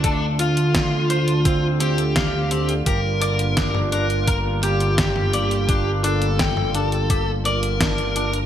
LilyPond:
<<
  \new Staff \with { instrumentName = "Lead electric guitar" } { \time 4/4 \key g \dorian \tempo 4 = 85 d'8 f'2 g'4. | bes'4. bes'8 r8 g'4.~ | g'8 a'2 bes'4. | }
  \new Staff \with { instrumentName = "Clean electric guitar" } { \time 4/4 \key g \dorian a'8 f'8 f'8 c''8 c'8 c'8 f''8 c'8 | g'8 d''8 d'8 d'8 bes'8 g'8 g'8 d''8 | d'8 d'8 g''8 d'8 g'8 d''8 d'8 d'8 | }
  \new Staff \with { instrumentName = "Analog synth pad" } { \time 4/4 \key g \dorian << { <d f'>1~ | <d f'>1~ | <d f'>1 | } \\ { <a d'>1 | <g bes>1~ | <g bes>1 | } >> }
  \new Staff \with { instrumentName = "Analog synth bass" } { \clef bass \time 4/4 \key g \dorian d,1 | g,,1~ | g,,1 | }
  \new DrumStaff \with { instrumentName = "Drums" } \drummode { \time 4/4 <hh bd>8 hh16 hh16 <hh bd sn>8 hh16 hh16 <hh bd>8 hh16 hh16 <hh bd sn>8 hh16 hh16 | <hh bd>8 hh16 hh16 <hh bd sn>16 toml16 hh16 hh16 <hh bd>8 hh16 hh16 <hh bd sn>16 toml16 hh16 hh16 | <hh bd>8 hh16 hh16 <hh bd sn>16 toml16 hh16 hh16 <hh bd>8 hh16 hh16 <hh bd sn>16 hh16 hh16 hh16 | }
>>